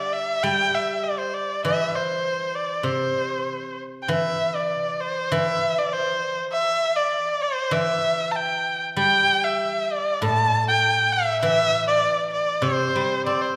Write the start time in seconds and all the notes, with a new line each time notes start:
Already playing: G3 D5
0.13 E5
0.43 G3 G5
0.74 E5
1.04 D5
1.18 C5
1.34 D5
1.65 E3 E5
1.95 C5
2.55 D5
2.83 C3 C5
4.02 G5
4.08 E3 E5
4.55 D5
5.00 C5
5.32 E3 E5
5.79 D5
5.92 C5
6.52 E5
6.96 D5
7.42 C5
7.71 E3 E5
8.31 A5
8.36 G5
8.96 G3 G5
9.44 E5
9.92 D5
10.22 A2 A5
10.68 G5
11.13 E5
11.42 E3 E5
11.87 D5
12.33 D5
12.62 C3 C5
12.96 G3
13.26 C4 D5
13.41 C5